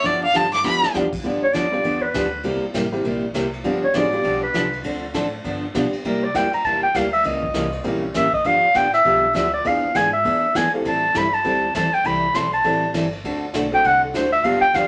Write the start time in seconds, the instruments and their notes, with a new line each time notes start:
0.04 upright bass G1, steel-string acoustic guitar D3 F3 B3 D4 G4, fiddle D5, brush sweep, kick, snare
0.23 fiddle F5
0.33 upright bass G2, steel-string acoustic guitar D3 F3 B3 D4 G4, fiddle A5, hi-hat pedal
0.53 fiddle D6, snare
0.63 upright bass F2, steel-string acoustic guitar D3 F3 B3 D4 G4, fiddle B5, snare
0.83 snare
0.93 upright bass E2, steel-string acoustic guitar D3 F3 B3 D4 G4, upright piano G3 B3 D4 F4 G4, snare, hi-hat pedal
1.13 kick, crash
1.24 upright bass G2, steel-string acoustic guitar D3 F3 B3 D4 G4, upright piano G3 B3 D4 F4 G4, kick
1.43 clarinet C#5
1.53 upright bass F2, steel-string acoustic guitar D3 F3 B3 D4 G4, clarinet D5, kick, snare, hi-hat pedal, ride
1.72 upright piano G3 B3 D4 F4 G4, ride
1.84 upright bass E2, steel-string acoustic guitar D3 F3 B3 D4 G4, kick, ride
2.02 clarinet B4
2.14 upright bass D2, steel-string acoustic guitar D3 F3 B3 D4 G4, kick, snare, hi-hat pedal, ride
2.43 upright bass C2, steel-string acoustic guitar C3 G3 A#3 E4 G4, upright piano G3 A#3 C4 E4 G4, kick, ride
2.63 muted upright bass stroke
2.74 upright bass A1, steel-string acoustic guitar C3 G3 A#3 E4 G4, kick, snare, hi-hat pedal, ride
2.92 upright piano G3 A#3 C4 E4 G4, ride
3.04 upright bass A#1, steel-string acoustic guitar C3 G3 A#3 E4 G4, kick, ride
3.34 upright bass C2, steel-string acoustic guitar C3 G3 A#3 E4 G4, kick, snare, hi-hat pedal, ride
3.53 ride
3.64 upright bass G1, steel-string acoustic guitar D3 F3 B3 D4 G4, upright piano G3 B3 D4 F4 G4, kick, ride
3.83 clarinet C#5
3.94 upright bass A1, steel-string acoustic guitar D3 F3 B3 D4 G4, upright piano G#3 C4 D#4 F#4 G#4, clarinet D5, kick, snare, hi-hat pedal, ride
4.12 upright piano G3 B3 D4 F4 G4, ride
4.23 upright bass B1, steel-string acoustic guitar D3 F3 B3 D4 G4, kick, ride
4.43 clarinet B4
4.54 upright bass C2, steel-string acoustic guitar D3 F3 B3 D4 G4, kick, snare, hi-hat pedal, ride
4.73 ride
4.84 upright bass D2, steel-string acoustic guitar D3 F3 C4 D4 A4, kick, ride
5.14 upright bass A2, steel-string acoustic guitar D3 F3 C4 D4 A4, kick, snare, hi-hat pedal, ride
5.44 upright bass G2, steel-string acoustic guitar D3 F3 B3 D4 G4, kick, ride
5.74 upright bass B2, steel-string acoustic guitar D3 F3 B3 D4 G4, upright piano G3 B3 D4 F4 G4, kick, snare, hi-hat pedal, ride
5.93 muted upright bass stroke, ride
6.04 upright bass C3, steel-string acoustic guitar C3 G3 A#3 E4 G4, clarinet A#4, kick, ride
6.23 clarinet D5
6.34 upright bass F2, steel-string acoustic guitar C3 G3 A#3 E4 G4, clarinet G5, kick, snare, hi-hat pedal, ride
6.53 clarinet A#5, muted upright bass stroke, ride
6.64 upright bass E2, steel-string acoustic guitar C3 G3 A#3 E4 G4, clarinet A5, kick, ride
6.83 clarinet G5
6.94 upright bass D2, steel-string acoustic guitar C3 G3 A#3 E4 G4, clarinet F5, kick, snare, hi-hat pedal, ride
7.13 clarinet E5, ride
7.24 upright bass C#2, steel-string acoustic guitar C#3 E3 A#3 C#4 G4, clarinet D#5, kick, ride
7.43 kick
7.54 upright bass C2, steel-string acoustic guitar C#3 E3 A#3 C#4 G4, kick, snare, hi-hat pedal, ride
7.72 ride
7.84 upright bass A#1, steel-string acoustic guitar C#3 E3 A#3 C#4 G4, upright piano G3 A#3 C#4 E4 G4, kick, ride
8.14 upright bass A1, steel-string acoustic guitar C#3 E3 A#3 C#4 G4, clarinet E5, kick, snare, hi-hat pedal, ride
8.33 clarinet D#5, kick, ride
8.44 upright bass G1, steel-string acoustic guitar D3 F3 B3 D4 G4, clarinet F5, kick, ride
8.63 muted upright bass stroke
8.74 upright bass A1, steel-string acoustic guitar D3 F3 B3 D4 G4, clarinet G5, kick, snare, hi-hat pedal, ride
8.93 clarinet E5, snare, ride
9.04 upright bass B1, steel-string acoustic guitar D3 F3 B3 D4 G4, upright piano G3 B3 D4 F4 G4, kick, ride
9.33 upright bass D2, steel-string acoustic guitar D3 F3 B3 D4 G4, clarinet E5, kick, snare, hi-hat pedal, ride
9.54 clarinet D5
9.65 upright bass E2, steel-string acoustic guitar E3 B3 D4 G#4, upright piano B3 D4 E4 F4 G#4, clarinet F5, kick, ride
9.84 muted upright bass stroke
9.95 upright bass G#2, steel-string acoustic guitar E3 B3 D4 G#4, clarinet G#5, kick, snare, hi-hat pedal, ride
10.13 clarinet E5
10.24 upright bass E2, steel-string acoustic guitar E3 B3 D4 G#4, kick, ride
10.55 upright bass F2, steel-string acoustic guitar E3 B3 D4 G#4, clarinet G#5, kick, snare, hi-hat pedal, ride
10.73 upright piano A3 C4 E4 G4 A4, clarinet F5
10.85 upright bass A2, steel-string acoustic guitar E3 G3 C4 E4 A4, clarinet A5, kick, ride
11.14 upright bass G2, steel-string acoustic guitar E3 G3 C4 E4 A4, clarinet B5, kick, snare, hi-hat pedal, ride
11.33 clarinet A5, ride
11.44 upright bass D2, steel-string acoustic guitar E3 G3 C4 E4 A4, upright piano A3 C4 E4 G4 A4, kick, ride
11.74 upright bass E2, steel-string acoustic guitar E3 G3 C4 E4 A4, clarinet A5, kick, snare, hi-hat pedal, ride
11.93 clarinet G5, ride
12.04 upright bass C2, steel-string acoustic guitar E3 G3 C4 E4 A4, clarinet B5, kick, ride
12.34 upright bass B1, steel-string acoustic guitar E3 G3 C4 E4 A4, clarinet C6, kick, snare, hi-hat pedal, ride
12.53 clarinet A5, ride
12.64 upright bass A1, steel-string acoustic guitar E3 G3 C4 E4 A4, upright piano A3 C4 E4 G4 A4, kick, ride
12.94 upright bass G1, steel-string acoustic guitar E3 G3 C4 E4 A4, kick, snare, hi-hat pedal, ride
13.12 ride
13.24 upright bass D2, steel-string acoustic guitar D3 A3 C4 F#4 A4, kick, ride
13.54 upright bass B1, steel-string acoustic guitar D3 A3 C4 F#4 A4, kick, snare, hi-hat pedal, ride
13.71 upright piano A3 C4 D4 F#4 A4, clarinet G5, ride
13.84 upright bass C2, steel-string acoustic guitar D3 A3 C4 F#4 A4, clarinet F#5, kick, ride
14.04 clarinet A4
14.14 upright bass D2, steel-string acoustic guitar D3 A3 C4 F#4 A4, clarinet C5, kick, snare, hi-hat pedal, ride
14.32 clarinet E5, ride
14.44 upright bass G2, steel-string acoustic guitar D3 F3 B3 D4 G4, upright piano G3 B3 D4 F4 G4, clarinet F5, kick, ride
14.61 clarinet G5
14.74 upright bass E2, steel-string acoustic guitar D3 F3 B3 D4 G4, clarinet F5, kick, snare, hi-hat pedal, ride